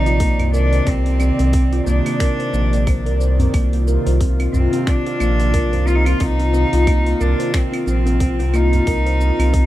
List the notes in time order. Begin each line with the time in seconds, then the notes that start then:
Already playing: A#1 C3 D#3 D#4 D5
0.06 F4, open hi-hat, shaker
0.20 A#3, kick, open hi-hat, shaker
0.39 C2 A#3, open hi-hat, udu, claves
0.53 D4 A#4, shaker
0.73 C5, open hi-hat, shaker
0.86 C2 C4, kick, open hi-hat, shaker
1.06 C4, open hi-hat
1.20 C4, claves, shaker
1.39 C2 C4, open hi-hat, shaker
1.53 C4, kick, open hi-hat, shaker
1.73 F4, open hi-hat
1.86 C2 A#3 D4, udu, shaker
2.06 A#3, open hi-hat, claves, shaker
2.20 A#4, finger snap, kick, open hi-hat, shaker
2.39 C5, open hi-hat
2.53 A#1 A#3, shaker
2.72 A#3, open hi-hat, shaker
2.87 C5, kick, open hi-hat, claves, shaker
3.06 C2 A#4, open hi-hat
3.20 C5, shaker
3.39 C4, open hi-hat, udu, shaker
3.54 C2 A#3 F4, kick, open hi-hat, claves, shaker
3.73 A#3, open hi-hat
3.87 A#4, shaker
4.06 C2 C5, open hi-hat, shaker
4.20 C4, kick, open hi-hat, shaker
4.39 C4, open hi-hat, claves
4.53 C2 C4, udu, shaker
4.73 C4, open hi-hat, shaker
4.87 C4 D4, finger snap, kick, open hi-hat, shaker
5.07 F4, open hi-hat
5.20 A#1 A#3, claves, shaker
5.40 A#3, open hi-hat, shaker
5.54 A#4, kick, open hi-hat, shaker
5.73 C2 C5, open hi-hat, udu
5.87 C4 F4, shaker
5.95 D#4
6.04 C4 F4, open hi-hat, claves, shaker
6.20 C2 C4 D#4, kick, open hi-hat, shaker
6.39 C4, open hi-hat
6.53 C4, shaker
6.73 C2 F4, open hi-hat, shaker
6.87 A#3, kick, open hi-hat, claves, shaker
7.06 A#3, open hi-hat
7.20 C2 D4 A#4, udu, shaker
7.39 C5, open hi-hat, shaker
7.54 C4, finger snap, kick, open hi-hat, shaker
7.73 C4, open hi-hat, claves
7.86 A#1 C4, shaker
8.06 C4, open hi-hat, shaker
8.20 C4, kick, open hi-hat, shaker
8.39 C2 F4, open hi-hat
8.53 A#3 D#4, claves, shaker
8.72 A#3, open hi-hat, udu, shaker
8.87 C2 A#4, kick, open hi-hat, shaker
9.06 C5, open hi-hat
9.20 C4, shaker
9.39 C2 C4, open hi-hat, claves, shaker
9.53 C4, kick, open hi-hat, shaker